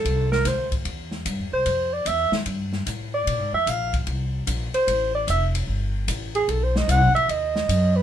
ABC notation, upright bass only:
X:1
M:4/4
L:1/8
Q:"Swing" 1/4=149
K:Flyd
V:1 name="Upright bass" clef=bass
C,,2 D,,2 E,,2 (3G,, E,, C,, | F,,2 E,, z G,,2 A,,2 | (3_B,, _A,, F,, _B,,,2 C,,2 B,,, z | A,,,2 F,,,2 G,,,2 A,,,2 |
B,,,2 (3C,, B,,, A,,, ^D,,2 ^F,,2 |]